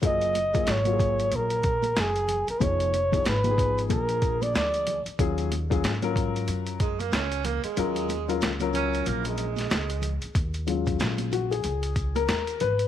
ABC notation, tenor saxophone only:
X:1
M:4/4
L:1/16
Q:"Swing 16ths" 1/4=93
K:Ebm
V:1 name="Tenor saxophone"
z16 | z16 | z8 z2 A, B, D2 B, A,- | A,4- A, z D2 B, A,6 z |
z16 |]